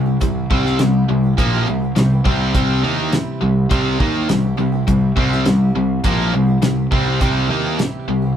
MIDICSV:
0, 0, Header, 1, 7, 480
1, 0, Start_track
1, 0, Tempo, 582524
1, 179, Time_signature, 4, 2, 24, 8
1, 6895, End_track
2, 0, Start_track
2, 0, Title_t, "Steel-string acoustic guitar"
2, 0, Program_c, 0, 25
2, 48, Note_on_c, 0, 67, 53
2, 59, Note_on_c, 0, 64, 46
2, 68, Note_on_c, 0, 60, 39
2, 166, Note_off_c, 0, 60, 0
2, 166, Note_on_c, 0, 48, 72
2, 170, Note_on_c, 0, 55, 75
2, 171, Note_off_c, 0, 67, 0
2, 172, Note_off_c, 0, 64, 0
2, 176, Note_on_c, 0, 60, 82
2, 180, Note_on_c, 0, 67, 82
2, 181, Note_on_c, 0, 64, 73
2, 520, Note_off_c, 0, 67, 0
2, 530, Note_off_c, 0, 64, 0
2, 530, Note_on_c, 0, 67, 55
2, 533, Note_off_c, 0, 48, 0
2, 535, Note_off_c, 0, 55, 0
2, 537, Note_off_c, 0, 60, 0
2, 540, Note_on_c, 0, 64, 44
2, 552, Note_on_c, 0, 60, 41
2, 646, Note_off_c, 0, 60, 0
2, 647, Note_on_c, 0, 48, 76
2, 651, Note_off_c, 0, 64, 0
2, 653, Note_on_c, 0, 55, 79
2, 655, Note_off_c, 0, 67, 0
2, 656, Note_on_c, 0, 60, 78
2, 661, Note_on_c, 0, 64, 78
2, 665, Note_on_c, 0, 67, 87
2, 1006, Note_off_c, 0, 67, 0
2, 1013, Note_off_c, 0, 48, 0
2, 1016, Note_off_c, 0, 55, 0
2, 1016, Note_on_c, 0, 67, 49
2, 1018, Note_off_c, 0, 60, 0
2, 1020, Note_off_c, 0, 64, 0
2, 1031, Note_on_c, 0, 64, 43
2, 1043, Note_on_c, 0, 60, 38
2, 1250, Note_off_c, 0, 67, 0
2, 1260, Note_on_c, 0, 67, 54
2, 1265, Note_off_c, 0, 64, 0
2, 1271, Note_off_c, 0, 60, 0
2, 1276, Note_on_c, 0, 64, 48
2, 1288, Note_on_c, 0, 60, 44
2, 1369, Note_off_c, 0, 60, 0
2, 1371, Note_on_c, 0, 55, 58
2, 1379, Note_off_c, 0, 64, 0
2, 1379, Note_on_c, 0, 60, 59
2, 1380, Note_off_c, 0, 67, 0
2, 1389, Note_on_c, 0, 64, 56
2, 1396, Note_on_c, 0, 67, 62
2, 1490, Note_off_c, 0, 67, 0
2, 1495, Note_off_c, 0, 55, 0
2, 1499, Note_off_c, 0, 60, 0
2, 1500, Note_on_c, 0, 67, 45
2, 1504, Note_off_c, 0, 64, 0
2, 1515, Note_on_c, 0, 64, 41
2, 1524, Note_on_c, 0, 60, 37
2, 1620, Note_off_c, 0, 67, 0
2, 1620, Note_on_c, 0, 48, 70
2, 1621, Note_off_c, 0, 60, 0
2, 1627, Note_off_c, 0, 64, 0
2, 1627, Note_on_c, 0, 55, 74
2, 1631, Note_on_c, 0, 60, 76
2, 1638, Note_on_c, 0, 64, 75
2, 1639, Note_on_c, 0, 67, 79
2, 1733, Note_off_c, 0, 67, 0
2, 1740, Note_off_c, 0, 48, 0
2, 1743, Note_off_c, 0, 55, 0
2, 1743, Note_on_c, 0, 67, 50
2, 1745, Note_off_c, 0, 60, 0
2, 1746, Note_off_c, 0, 64, 0
2, 1756, Note_on_c, 0, 64, 50
2, 1766, Note_on_c, 0, 60, 45
2, 1856, Note_off_c, 0, 60, 0
2, 1856, Note_on_c, 0, 55, 54
2, 1861, Note_off_c, 0, 67, 0
2, 1864, Note_off_c, 0, 64, 0
2, 1866, Note_on_c, 0, 60, 49
2, 1879, Note_on_c, 0, 67, 59
2, 1964, Note_off_c, 0, 67, 0
2, 1974, Note_on_c, 0, 67, 45
2, 1977, Note_off_c, 0, 55, 0
2, 1982, Note_off_c, 0, 60, 0
2, 1991, Note_on_c, 0, 64, 45
2, 2000, Note_on_c, 0, 60, 38
2, 2091, Note_on_c, 0, 48, 74
2, 2092, Note_off_c, 0, 60, 0
2, 2095, Note_off_c, 0, 64, 0
2, 2097, Note_off_c, 0, 67, 0
2, 2098, Note_on_c, 0, 55, 75
2, 2102, Note_on_c, 0, 60, 82
2, 2105, Note_on_c, 0, 64, 85
2, 2107, Note_on_c, 0, 67, 84
2, 2445, Note_off_c, 0, 67, 0
2, 2455, Note_off_c, 0, 48, 0
2, 2455, Note_on_c, 0, 67, 51
2, 2458, Note_off_c, 0, 55, 0
2, 2458, Note_off_c, 0, 64, 0
2, 2460, Note_off_c, 0, 60, 0
2, 2468, Note_on_c, 0, 64, 43
2, 2480, Note_on_c, 0, 60, 41
2, 2574, Note_off_c, 0, 60, 0
2, 2577, Note_off_c, 0, 64, 0
2, 2577, Note_off_c, 0, 67, 0
2, 2578, Note_on_c, 0, 48, 72
2, 2581, Note_on_c, 0, 55, 85
2, 2583, Note_on_c, 0, 60, 82
2, 2587, Note_on_c, 0, 64, 76
2, 2593, Note_on_c, 0, 67, 88
2, 3158, Note_off_c, 0, 67, 0
2, 3168, Note_on_c, 0, 67, 52
2, 3177, Note_off_c, 0, 64, 0
2, 3178, Note_off_c, 0, 48, 0
2, 3180, Note_off_c, 0, 55, 0
2, 3181, Note_off_c, 0, 60, 0
2, 3187, Note_on_c, 0, 64, 47
2, 3194, Note_on_c, 0, 60, 45
2, 3293, Note_off_c, 0, 67, 0
2, 3294, Note_on_c, 0, 55, 54
2, 3295, Note_off_c, 0, 60, 0
2, 3299, Note_off_c, 0, 64, 0
2, 3304, Note_on_c, 0, 60, 64
2, 3309, Note_on_c, 0, 64, 59
2, 3316, Note_on_c, 0, 67, 64
2, 3406, Note_off_c, 0, 67, 0
2, 3416, Note_off_c, 0, 55, 0
2, 3420, Note_off_c, 0, 64, 0
2, 3421, Note_off_c, 0, 60, 0
2, 3430, Note_on_c, 0, 64, 41
2, 3439, Note_on_c, 0, 60, 42
2, 3535, Note_on_c, 0, 48, 66
2, 3537, Note_off_c, 0, 60, 0
2, 3538, Note_off_c, 0, 64, 0
2, 3544, Note_on_c, 0, 55, 67
2, 3547, Note_on_c, 0, 60, 83
2, 3548, Note_on_c, 0, 64, 78
2, 3553, Note_on_c, 0, 67, 74
2, 3640, Note_off_c, 0, 67, 0
2, 3650, Note_on_c, 0, 67, 55
2, 3657, Note_off_c, 0, 48, 0
2, 3657, Note_off_c, 0, 64, 0
2, 3661, Note_off_c, 0, 55, 0
2, 3663, Note_off_c, 0, 60, 0
2, 3667, Note_on_c, 0, 64, 44
2, 3677, Note_on_c, 0, 60, 46
2, 3764, Note_on_c, 0, 55, 57
2, 3767, Note_off_c, 0, 60, 0
2, 3774, Note_off_c, 0, 67, 0
2, 3776, Note_off_c, 0, 64, 0
2, 3777, Note_on_c, 0, 60, 59
2, 3786, Note_on_c, 0, 64, 56
2, 3789, Note_on_c, 0, 67, 58
2, 3880, Note_off_c, 0, 67, 0
2, 3890, Note_on_c, 0, 67, 47
2, 3891, Note_off_c, 0, 55, 0
2, 3894, Note_off_c, 0, 64, 0
2, 3898, Note_off_c, 0, 60, 0
2, 3904, Note_on_c, 0, 64, 49
2, 3911, Note_on_c, 0, 60, 40
2, 4013, Note_off_c, 0, 60, 0
2, 4013, Note_off_c, 0, 64, 0
2, 4014, Note_off_c, 0, 67, 0
2, 4014, Note_on_c, 0, 48, 77
2, 4017, Note_on_c, 0, 55, 79
2, 4023, Note_on_c, 0, 60, 78
2, 4023, Note_on_c, 0, 64, 80
2, 4027, Note_on_c, 0, 67, 84
2, 4362, Note_off_c, 0, 67, 0
2, 4372, Note_on_c, 0, 67, 44
2, 4375, Note_off_c, 0, 64, 0
2, 4376, Note_off_c, 0, 48, 0
2, 4378, Note_off_c, 0, 55, 0
2, 4381, Note_off_c, 0, 60, 0
2, 4385, Note_on_c, 0, 64, 48
2, 4392, Note_on_c, 0, 60, 39
2, 4492, Note_off_c, 0, 64, 0
2, 4494, Note_off_c, 0, 60, 0
2, 4494, Note_on_c, 0, 48, 73
2, 4495, Note_off_c, 0, 67, 0
2, 4497, Note_on_c, 0, 55, 73
2, 4502, Note_on_c, 0, 64, 72
2, 4504, Note_on_c, 0, 60, 76
2, 4508, Note_on_c, 0, 67, 84
2, 5089, Note_off_c, 0, 67, 0
2, 5096, Note_off_c, 0, 48, 0
2, 5097, Note_off_c, 0, 55, 0
2, 5099, Note_on_c, 0, 67, 49
2, 5100, Note_off_c, 0, 64, 0
2, 5101, Note_off_c, 0, 60, 0
2, 5111, Note_on_c, 0, 64, 51
2, 5122, Note_on_c, 0, 60, 45
2, 5205, Note_off_c, 0, 60, 0
2, 5207, Note_on_c, 0, 55, 54
2, 5214, Note_off_c, 0, 64, 0
2, 5215, Note_on_c, 0, 60, 58
2, 5218, Note_off_c, 0, 67, 0
2, 5224, Note_on_c, 0, 64, 62
2, 5232, Note_on_c, 0, 67, 62
2, 5322, Note_off_c, 0, 67, 0
2, 5332, Note_on_c, 0, 67, 47
2, 5333, Note_off_c, 0, 55, 0
2, 5336, Note_off_c, 0, 60, 0
2, 5337, Note_off_c, 0, 64, 0
2, 5347, Note_on_c, 0, 64, 42
2, 5354, Note_on_c, 0, 60, 37
2, 5455, Note_off_c, 0, 67, 0
2, 5455, Note_on_c, 0, 48, 73
2, 5457, Note_off_c, 0, 60, 0
2, 5460, Note_off_c, 0, 64, 0
2, 5462, Note_on_c, 0, 55, 75
2, 5467, Note_on_c, 0, 60, 75
2, 5470, Note_on_c, 0, 64, 75
2, 5473, Note_on_c, 0, 67, 80
2, 5567, Note_off_c, 0, 67, 0
2, 5576, Note_off_c, 0, 48, 0
2, 5577, Note_on_c, 0, 67, 49
2, 5580, Note_off_c, 0, 55, 0
2, 5583, Note_off_c, 0, 60, 0
2, 5584, Note_off_c, 0, 64, 0
2, 5593, Note_on_c, 0, 64, 46
2, 5602, Note_on_c, 0, 60, 46
2, 5694, Note_on_c, 0, 55, 50
2, 5697, Note_off_c, 0, 60, 0
2, 5697, Note_off_c, 0, 67, 0
2, 5701, Note_off_c, 0, 64, 0
2, 5707, Note_on_c, 0, 60, 55
2, 5711, Note_on_c, 0, 64, 56
2, 5722, Note_on_c, 0, 67, 56
2, 5800, Note_off_c, 0, 67, 0
2, 5810, Note_on_c, 0, 67, 47
2, 5811, Note_off_c, 0, 64, 0
2, 5816, Note_off_c, 0, 55, 0
2, 5821, Note_on_c, 0, 64, 43
2, 5822, Note_off_c, 0, 60, 0
2, 5834, Note_on_c, 0, 60, 38
2, 5930, Note_on_c, 0, 48, 72
2, 5931, Note_off_c, 0, 60, 0
2, 5933, Note_off_c, 0, 64, 0
2, 5934, Note_off_c, 0, 67, 0
2, 5934, Note_on_c, 0, 55, 67
2, 5941, Note_on_c, 0, 60, 79
2, 5943, Note_on_c, 0, 64, 82
2, 5947, Note_on_c, 0, 67, 82
2, 6283, Note_off_c, 0, 67, 0
2, 6293, Note_on_c, 0, 67, 52
2, 6294, Note_off_c, 0, 48, 0
2, 6296, Note_off_c, 0, 55, 0
2, 6296, Note_off_c, 0, 64, 0
2, 6299, Note_off_c, 0, 60, 0
2, 6306, Note_on_c, 0, 64, 49
2, 6315, Note_on_c, 0, 60, 39
2, 6415, Note_off_c, 0, 67, 0
2, 6416, Note_off_c, 0, 60, 0
2, 6416, Note_on_c, 0, 48, 68
2, 6422, Note_off_c, 0, 64, 0
2, 6425, Note_on_c, 0, 55, 73
2, 6426, Note_on_c, 0, 60, 73
2, 6430, Note_on_c, 0, 64, 79
2, 6434, Note_on_c, 0, 67, 75
2, 6763, Note_off_c, 0, 67, 0
2, 6773, Note_on_c, 0, 67, 49
2, 6777, Note_off_c, 0, 48, 0
2, 6780, Note_off_c, 0, 64, 0
2, 6781, Note_off_c, 0, 55, 0
2, 6782, Note_off_c, 0, 60, 0
2, 6790, Note_on_c, 0, 64, 42
2, 6799, Note_on_c, 0, 60, 39
2, 6895, Note_off_c, 0, 60, 0
2, 6895, Note_off_c, 0, 64, 0
2, 6895, Note_off_c, 0, 67, 0
2, 6895, End_track
3, 0, Start_track
3, 0, Title_t, "Overdriven electric guitar"
3, 0, Program_c, 1, 29
3, 0, Note_on_c, 1, 48, 54
3, 0, Note_on_c, 1, 55, 59
3, 130, Note_off_c, 1, 48, 0
3, 133, Note_off_c, 1, 55, 0
3, 175, Note_on_c, 1, 48, 51
3, 179, Note_on_c, 1, 55, 58
3, 369, Note_off_c, 1, 48, 0
3, 371, Note_off_c, 1, 55, 0
3, 414, Note_on_c, 1, 48, 83
3, 420, Note_on_c, 1, 55, 81
3, 424, Note_on_c, 1, 60, 80
3, 647, Note_off_c, 1, 48, 0
3, 652, Note_off_c, 1, 55, 0
3, 654, Note_off_c, 1, 60, 0
3, 657, Note_on_c, 1, 48, 57
3, 663, Note_on_c, 1, 55, 58
3, 850, Note_off_c, 1, 48, 0
3, 853, Note_off_c, 1, 55, 0
3, 899, Note_on_c, 1, 48, 56
3, 902, Note_on_c, 1, 55, 66
3, 1091, Note_off_c, 1, 48, 0
3, 1093, Note_off_c, 1, 55, 0
3, 1139, Note_on_c, 1, 46, 78
3, 1143, Note_on_c, 1, 53, 85
3, 1147, Note_on_c, 1, 58, 91
3, 1372, Note_off_c, 1, 46, 0
3, 1374, Note_off_c, 1, 53, 0
3, 1376, Note_off_c, 1, 58, 0
3, 1377, Note_on_c, 1, 48, 60
3, 1380, Note_on_c, 1, 55, 67
3, 1570, Note_off_c, 1, 48, 0
3, 1571, Note_off_c, 1, 55, 0
3, 1612, Note_on_c, 1, 48, 52
3, 1616, Note_on_c, 1, 55, 64
3, 1808, Note_off_c, 1, 48, 0
3, 1810, Note_off_c, 1, 55, 0
3, 1851, Note_on_c, 1, 48, 75
3, 1857, Note_on_c, 1, 55, 77
3, 1863, Note_on_c, 1, 60, 80
3, 2079, Note_off_c, 1, 48, 0
3, 2082, Note_off_c, 1, 55, 0
3, 2089, Note_off_c, 1, 60, 0
3, 2089, Note_on_c, 1, 48, 85
3, 2092, Note_on_c, 1, 55, 83
3, 2099, Note_on_c, 1, 60, 91
3, 2326, Note_off_c, 1, 48, 0
3, 2328, Note_off_c, 1, 55, 0
3, 2329, Note_on_c, 1, 51, 82
3, 2332, Note_off_c, 1, 60, 0
3, 2335, Note_on_c, 1, 58, 84
3, 2339, Note_on_c, 1, 63, 99
3, 2567, Note_off_c, 1, 51, 0
3, 2570, Note_off_c, 1, 58, 0
3, 2572, Note_off_c, 1, 63, 0
3, 2811, Note_on_c, 1, 48, 59
3, 2813, Note_on_c, 1, 55, 61
3, 3007, Note_off_c, 1, 48, 0
3, 3008, Note_off_c, 1, 55, 0
3, 3045, Note_on_c, 1, 48, 78
3, 3052, Note_on_c, 1, 55, 78
3, 3054, Note_on_c, 1, 60, 87
3, 3284, Note_off_c, 1, 48, 0
3, 3288, Note_off_c, 1, 55, 0
3, 3289, Note_off_c, 1, 60, 0
3, 3289, Note_on_c, 1, 51, 79
3, 3295, Note_on_c, 1, 58, 80
3, 3298, Note_on_c, 1, 63, 80
3, 3527, Note_off_c, 1, 51, 0
3, 3529, Note_off_c, 1, 58, 0
3, 3531, Note_off_c, 1, 63, 0
3, 3535, Note_on_c, 1, 55, 57
3, 3536, Note_on_c, 1, 48, 52
3, 3729, Note_off_c, 1, 48, 0
3, 3729, Note_off_c, 1, 55, 0
3, 3772, Note_on_c, 1, 48, 57
3, 3778, Note_on_c, 1, 55, 57
3, 3967, Note_off_c, 1, 48, 0
3, 3970, Note_off_c, 1, 55, 0
3, 4014, Note_on_c, 1, 48, 55
3, 4017, Note_on_c, 1, 55, 56
3, 4208, Note_off_c, 1, 48, 0
3, 4210, Note_off_c, 1, 55, 0
3, 4252, Note_on_c, 1, 48, 78
3, 4258, Note_on_c, 1, 55, 77
3, 4261, Note_on_c, 1, 60, 87
3, 4488, Note_off_c, 1, 48, 0
3, 4491, Note_off_c, 1, 55, 0
3, 4492, Note_off_c, 1, 60, 0
3, 4498, Note_on_c, 1, 48, 56
3, 4502, Note_on_c, 1, 55, 59
3, 4690, Note_off_c, 1, 48, 0
3, 4692, Note_off_c, 1, 55, 0
3, 4745, Note_on_c, 1, 48, 56
3, 4747, Note_on_c, 1, 55, 62
3, 4933, Note_off_c, 1, 48, 0
3, 4935, Note_off_c, 1, 55, 0
3, 4977, Note_on_c, 1, 46, 77
3, 4980, Note_on_c, 1, 53, 78
3, 4983, Note_on_c, 1, 58, 95
3, 5210, Note_off_c, 1, 46, 0
3, 5212, Note_off_c, 1, 53, 0
3, 5213, Note_off_c, 1, 58, 0
3, 5222, Note_on_c, 1, 48, 60
3, 5226, Note_on_c, 1, 55, 62
3, 5412, Note_off_c, 1, 48, 0
3, 5414, Note_off_c, 1, 55, 0
3, 5453, Note_on_c, 1, 48, 52
3, 5457, Note_on_c, 1, 55, 56
3, 5648, Note_off_c, 1, 48, 0
3, 5649, Note_off_c, 1, 55, 0
3, 5697, Note_on_c, 1, 48, 66
3, 5699, Note_on_c, 1, 55, 86
3, 5704, Note_on_c, 1, 60, 87
3, 5928, Note_off_c, 1, 48, 0
3, 5931, Note_off_c, 1, 55, 0
3, 5934, Note_off_c, 1, 60, 0
3, 5938, Note_on_c, 1, 48, 73
3, 5941, Note_on_c, 1, 55, 85
3, 5947, Note_on_c, 1, 60, 91
3, 6165, Note_off_c, 1, 48, 0
3, 6168, Note_on_c, 1, 51, 81
3, 6171, Note_off_c, 1, 55, 0
3, 6175, Note_off_c, 1, 60, 0
3, 6175, Note_on_c, 1, 58, 85
3, 6178, Note_on_c, 1, 63, 82
3, 6406, Note_off_c, 1, 51, 0
3, 6409, Note_off_c, 1, 58, 0
3, 6411, Note_off_c, 1, 63, 0
3, 6660, Note_on_c, 1, 48, 60
3, 6661, Note_on_c, 1, 55, 59
3, 6851, Note_off_c, 1, 48, 0
3, 6851, Note_off_c, 1, 55, 0
3, 6895, End_track
4, 0, Start_track
4, 0, Title_t, "Picked electric bass"
4, 0, Program_c, 2, 34
4, 0, Note_on_c, 2, 36, 67
4, 162, Note_off_c, 2, 36, 0
4, 179, Note_on_c, 2, 36, 67
4, 402, Note_off_c, 2, 36, 0
4, 420, Note_on_c, 2, 36, 87
4, 643, Note_off_c, 2, 36, 0
4, 666, Note_on_c, 2, 36, 67
4, 886, Note_off_c, 2, 36, 0
4, 906, Note_on_c, 2, 36, 70
4, 1126, Note_off_c, 2, 36, 0
4, 1139, Note_on_c, 2, 34, 84
4, 1362, Note_off_c, 2, 34, 0
4, 1389, Note_on_c, 2, 36, 74
4, 1607, Note_off_c, 2, 36, 0
4, 1632, Note_on_c, 2, 36, 75
4, 1849, Note_off_c, 2, 36, 0
4, 1858, Note_on_c, 2, 36, 78
4, 2082, Note_off_c, 2, 36, 0
4, 2097, Note_on_c, 2, 36, 82
4, 2321, Note_off_c, 2, 36, 0
4, 2338, Note_on_c, 2, 39, 84
4, 2561, Note_off_c, 2, 39, 0
4, 2822, Note_on_c, 2, 36, 74
4, 3044, Note_off_c, 2, 36, 0
4, 3056, Note_on_c, 2, 36, 80
4, 3280, Note_off_c, 2, 36, 0
4, 3298, Note_on_c, 2, 39, 89
4, 3521, Note_off_c, 2, 39, 0
4, 3549, Note_on_c, 2, 36, 71
4, 3767, Note_off_c, 2, 36, 0
4, 3782, Note_on_c, 2, 36, 72
4, 4003, Note_off_c, 2, 36, 0
4, 4023, Note_on_c, 2, 36, 68
4, 4244, Note_off_c, 2, 36, 0
4, 4261, Note_on_c, 2, 36, 81
4, 4483, Note_off_c, 2, 36, 0
4, 4503, Note_on_c, 2, 36, 65
4, 4724, Note_off_c, 2, 36, 0
4, 4743, Note_on_c, 2, 36, 65
4, 4964, Note_off_c, 2, 36, 0
4, 4982, Note_on_c, 2, 34, 77
4, 5203, Note_off_c, 2, 34, 0
4, 5223, Note_on_c, 2, 36, 73
4, 5444, Note_off_c, 2, 36, 0
4, 5459, Note_on_c, 2, 36, 72
4, 5682, Note_off_c, 2, 36, 0
4, 5703, Note_on_c, 2, 36, 79
4, 5924, Note_off_c, 2, 36, 0
4, 5943, Note_on_c, 2, 36, 82
4, 6164, Note_off_c, 2, 36, 0
4, 6171, Note_on_c, 2, 39, 84
4, 6397, Note_off_c, 2, 39, 0
4, 6659, Note_on_c, 2, 36, 74
4, 6882, Note_off_c, 2, 36, 0
4, 6895, End_track
5, 0, Start_track
5, 0, Title_t, "Muted overdriven electric guitar strokes"
5, 2572, Note_on_c, 9, 29, 54
5, 2654, Note_off_c, 9, 29, 0
5, 6422, Note_on_c, 9, 29, 47
5, 6505, Note_off_c, 9, 29, 0
5, 6895, End_track
6, 0, Start_track
6, 0, Title_t, "Muted picked electric bass strokes"
6, 2585, Note_on_c, 9, 29, 35
6, 2668, Note_off_c, 9, 29, 0
6, 6418, Note_on_c, 9, 29, 33
6, 6500, Note_off_c, 9, 29, 0
6, 6895, End_track
7, 0, Start_track
7, 0, Title_t, "Drums"
7, 175, Note_on_c, 9, 42, 61
7, 178, Note_on_c, 9, 36, 77
7, 258, Note_off_c, 9, 42, 0
7, 260, Note_off_c, 9, 36, 0
7, 418, Note_on_c, 9, 36, 93
7, 500, Note_off_c, 9, 36, 0
7, 544, Note_on_c, 9, 38, 27
7, 626, Note_off_c, 9, 38, 0
7, 652, Note_on_c, 9, 42, 58
7, 657, Note_on_c, 9, 38, 94
7, 734, Note_off_c, 9, 42, 0
7, 739, Note_off_c, 9, 38, 0
7, 1138, Note_on_c, 9, 36, 90
7, 1141, Note_on_c, 9, 42, 55
7, 1221, Note_off_c, 9, 36, 0
7, 1223, Note_off_c, 9, 42, 0
7, 1616, Note_on_c, 9, 42, 51
7, 1621, Note_on_c, 9, 38, 97
7, 1699, Note_off_c, 9, 42, 0
7, 1704, Note_off_c, 9, 38, 0
7, 1858, Note_on_c, 9, 36, 98
7, 1941, Note_off_c, 9, 36, 0
7, 2098, Note_on_c, 9, 36, 91
7, 2099, Note_on_c, 9, 42, 53
7, 2181, Note_off_c, 9, 36, 0
7, 2182, Note_off_c, 9, 42, 0
7, 2575, Note_on_c, 9, 42, 50
7, 2580, Note_on_c, 9, 38, 94
7, 2658, Note_off_c, 9, 42, 0
7, 2663, Note_off_c, 9, 38, 0
7, 3054, Note_on_c, 9, 42, 52
7, 3057, Note_on_c, 9, 36, 90
7, 3137, Note_off_c, 9, 42, 0
7, 3139, Note_off_c, 9, 36, 0
7, 3298, Note_on_c, 9, 36, 84
7, 3380, Note_off_c, 9, 36, 0
7, 3536, Note_on_c, 9, 42, 54
7, 3541, Note_on_c, 9, 38, 91
7, 3619, Note_off_c, 9, 42, 0
7, 3624, Note_off_c, 9, 38, 0
7, 4019, Note_on_c, 9, 36, 83
7, 4020, Note_on_c, 9, 42, 56
7, 4102, Note_off_c, 9, 36, 0
7, 4102, Note_off_c, 9, 42, 0
7, 4258, Note_on_c, 9, 36, 94
7, 4341, Note_off_c, 9, 36, 0
7, 4384, Note_on_c, 9, 38, 26
7, 4467, Note_off_c, 9, 38, 0
7, 4496, Note_on_c, 9, 42, 56
7, 4501, Note_on_c, 9, 38, 100
7, 4578, Note_off_c, 9, 42, 0
7, 4583, Note_off_c, 9, 38, 0
7, 4977, Note_on_c, 9, 42, 57
7, 4981, Note_on_c, 9, 36, 90
7, 5059, Note_off_c, 9, 42, 0
7, 5063, Note_off_c, 9, 36, 0
7, 5458, Note_on_c, 9, 42, 59
7, 5463, Note_on_c, 9, 38, 95
7, 5540, Note_off_c, 9, 42, 0
7, 5545, Note_off_c, 9, 38, 0
7, 5701, Note_on_c, 9, 36, 94
7, 5783, Note_off_c, 9, 36, 0
7, 5941, Note_on_c, 9, 42, 55
7, 5942, Note_on_c, 9, 36, 95
7, 6024, Note_off_c, 9, 36, 0
7, 6024, Note_off_c, 9, 42, 0
7, 6421, Note_on_c, 9, 42, 55
7, 6426, Note_on_c, 9, 38, 101
7, 6503, Note_off_c, 9, 42, 0
7, 6508, Note_off_c, 9, 38, 0
7, 6895, End_track
0, 0, End_of_file